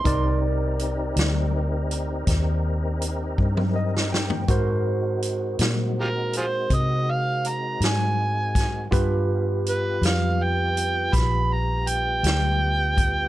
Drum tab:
HH |x---x-x---x-x---x-------|x---x-x---x-x---x-x---x-|x---x-x---x-x---x-x---x-|
SD |------o-----o--------oo-|------o-----------o---o-|------o-----o-----o-----|
T1 |-------------------o----|------------------------|------------------------|
FT |-----------------------o|------------------------|------------------------|
BD |o-----------o-----o-----|o-----------o---------o-|o-----------o---------o-|